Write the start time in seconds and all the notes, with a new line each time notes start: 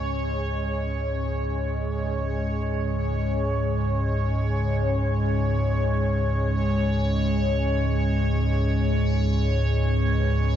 Already playing: C#2 G#2 G#3 C#4 C#5
4.39 C#5
9.60 B4